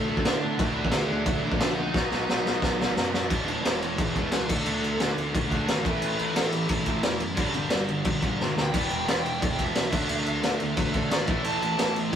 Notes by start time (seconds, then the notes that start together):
Already playing: D2 D3 F#3 A3 D4 F#4
0.09 A3 A4
0.17 kick
0.25 A2 D4 D5, snare, crash
0.41 A2 D3 F#3 A3 D4 F#4
0.56 D2 D3 E3 F#3 A3 D4 E4, kick, crash
0.60 F#4
0.75 D2
0.85 kick
0.91 D2 G#3 G#4, snare, crash
1.06 D2 D3 A3 D4
1.25 D2 F#3 F#4, kick, crash
1.43 D2 E3 E4
1.52 kick
1.58 A#1 D4 D5, snare, crash
1.74 D3 F#3 A3 D4 D#4 F#4 D#5
1.91 B1 B2 F#3 B3 D#4 F#4, kick, snare
2.11 B1, snare
2.29 B1, snare
2.42 B1 B2 F#3 B3
2.46 snare
2.62 B1, kick, snare
2.81 snare
2.97 F#2, snare
3.11 F#2 F#3 B3 D#4 F#4, snare
3.15 B2
3.28 E1 E2 B2 E3 G#3 B3, kick, crash
3.44 E2 B2 E3 G#3 E4 C#5, crash
3.49 E1
3.61 E2 B2 E3 G#3 B3 E4 C#5
3.65 E1, snare, crash
3.79 E2 B2 E3 G#3 E4 C#5, crash
3.95 E1 E2 B2 E3 G#3 G#4, kick, crash
4.00 B4
4.11 E2 B2 E3 G#3 G#4
4.16 B3 B4, kick, crash
4.30 C#2 E2 B2 E3 G#3 G#4 B4, snare, crash
4.48 D2 D3 A3 D4 A4, kick, crash
4.64 D2 D3 A3 D4, crash
4.83 D3 A3, crash
4.98 D2 D3 A3 D4, snare, crash
5.16 D2 D3 A3, crash
5.32 D2 D3 A3, kick, crash
5.49 D3 A3 D4, kick, crash
5.65 G#1 D3 A3, snare, crash
5.81 A1 A2 E3 A3, kick
5.85 A2 E3 A3 B4, crash
5.98 A1 A2 E3 A3, crash
6.18 A1 A2 E3, crash
6.32 A1 A2 E3 A3, snare, crash
6.36 A4
6.52 A2 E3 G4, crash
6.67 A1 A2 E3, kick, crash
6.74 E4
6.84 A2 E3 A3, kick, crash
6.91 E4
7.00 A2 E3, snare, crash
7.04 E1
7.18 F#2 A2 E3, crash
7.35 G1 G2 D3 G3, kick, crash
7.52 G2 D3, crash
7.69 G1 G2 D3 G3, snare, crash
7.88 G1 G2 D3, crash
8.04 G1 G2 D3, kick, crash
8.22 G2 D3 G3, kick, crash
8.39 G1 G2 D3, snare
8.55 D2 G2 D3, snare
8.62 G5
8.72 E1 E2 B2 E3 G#3 B3 D5, kick, crash
8.83 G5
8.88 E1 E2 B2 E3 G#3, crash
8.95 G5
9.05 E1 E2 B2 E3 G#3 B3 D5, snare, crash
9.19 E3 G5
9.23 E2 B2 G#3, crash
9.30 G5
9.40 E1 E2 B2 E3 G#3 D5, kick, crash
9.51 G5
9.56 E2 B2 E3 G#3 B3, kick, crash
9.64 E5
9.74 B1 E2 B2 E3 G#3, snare, crash
9.91 D2 D3 A3 D4, kick, crash
10.08 D2 D3 A3 D4, crash
10.24 D3 A3, crash
10.41 D2 D3 A3 D4, snare, crash
10.58 D2 D3 A3, crash
10.74 D2 D3 A3 B4, kick, crash
10.91 D3 A3 D4 A4, kick, crash
11.09 G#1 D3 A3 D5, snare, crash
11.26 A1 A2 E3 A3, kick, crash
11.43 A1 A2 E3 A3 A5, crash
11.60 A1 A2 E3 A5, crash
11.76 A1 A2 E3 A3, snare, crash
11.96 A2 E3, crash
12.11 A2 E3